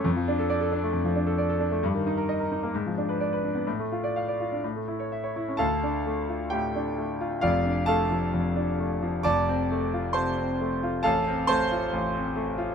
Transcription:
\new Staff \with { instrumentName = "Grand piano" } { \time 4/4 \key d \minor \tempo 4 = 132 << { r1 | r1 | r1 | <a' f'' a''>2 <g' g''>2 |
<f' d'' f''>4 <a' f'' a''>2. | <d'' a'' d'''>2 <c'' a'' c'''>2 | <a' f'' a''>4 <c'' a'' c'''>2. | } \\ { f,16 f16 d'16 a'16 d''16 a'16 d'16 a16 f,16 f16 d'16 a'16 d''16 a'16 d'16 a16 | g,16 ees16 ees'16 bes'16 ees''16 bes'16 ees'16 bes16 gis,16 eis16 d'16 b'16 d''16 b'16 d'16 b16 | a,16 a16 f'16 d''16 f''16 d''16 f'16 d'16 a,16 a16 e'16 cis''16 e''16 cis''16 e'16 cis'16 | d,8 d'8 a8 f'8 a,8 d'8 a8 f'8 |
<f,, f,>8 d'8 a8 f8 f,8 d'8 a8 f8 | <f,, f,>8 c'8 a8 f'8 c8 c'8 a8 f'8 | a,,8 c'8 a8 f'8 a,,8 c'8 a8 f'8 | } >> }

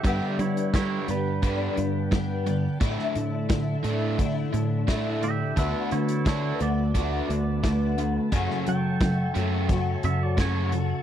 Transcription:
<<
  \new Staff \with { instrumentName = "Tonewheel organ" } { \time 4/4 \key a \mixolydian \tempo 4 = 87 << { b'1 | a'1 | b'1 | <a' cis'''>1 | } \\ { g''1 | e''1 | a''1~ | a''1 | } >> }
  \new Staff \with { instrumentName = "Clean electric guitar" } { \time 4/4 \key a \mixolydian <g' e''>8 <e' cis''>8 <e' cis''>8 b'2 r8 | r2. r8 <g' e''>8 | <b' e''>8 <e' cis''>8 <e' cis''>8 d''2 r8 | r8 g''2 e''16 d''16 cis''8 r8 | }
  \new Staff \with { instrumentName = "Twelve-string acoustic guitar" } { \time 4/4 \key a \mixolydian <g, d g b d' g'>4 <g b d' g'>8 <g b d' g'>8 <g, d g b d' g'>4 <g b d' g'>8 <g b d' g'>8 | <a, d a d' e'>4 <d a d' e'>8 <a d' e'>8 <a, d a d' e'>4 <d a d' e'>4 | <d a b fis'>4 <d a b fis'>8 <a b fis'>8 <d a b fis'>4 <d a b fis'>4 | <fis, cis fis a cis'>4 <fis a cis'>8 <fis a cis'>8 <fis, cis fis a cis'>4 <fis a cis' fis'>8 <fis a cis' fis'>8 | }
  \new Staff \with { instrumentName = "Overdriven electric guitar" } { \clef bass \time 4/4 \key a \mixolydian <g, d g>8 <g, d>8 <g, d g>8 <g, d>8 <g, d g>8 <g, d>8 <g, d>8 <g, d>8 | <a, d a>8 <a, d>8 <a, d>8 <a, d a>8 <a, d>8 <a, d>8 <a, d a>8 <a, d>8 | <d a d'>8 <d a>8 <d a d'>8 <d a>8 <d a d'>8 <d a>8 <d a>8 <d a>8 | <fis, cis fis>8 <fis, cis>8 <fis, cis>8 <fis, cis fis>8 <fis, cis>8 <fis, cis>8 <fis, cis fis>8 <fis, cis>8 | }
  \new Staff \with { instrumentName = "Picked electric bass" } { \clef bass \time 4/4 \key a \mixolydian g,16 r16 g4 g,4 g,4. | a,16 r16 a,4 a,4 a,4. | d,16 r16 d4 d,4 d,4. | fis,16 r16 fis4 fis,4 fis,4. | }
  \new DrumStaff \with { instrumentName = "Drums" } \drummode { \time 4/4 <hh bd>8 hh16 hh16 <hh bd sn>8 hh8 <hh bd>8 hh8 <hh bd sn>8 hh8 | <hh bd>16 sn16 hh8 <hh bd sn>8 hh8 <hh bd>8 hh8 <hh bd sn>8 hh8 | <hh bd>8 hh16 hh16 <hh bd sn>8 hh8 <hh bd>8 hh8 <hh bd sn>8 hh8 | <hh bd>16 sn16 hh8 <hh bd sn>8 hh8 <hh bd>8 hh8 <hh bd sn>8 hh8 | }
>>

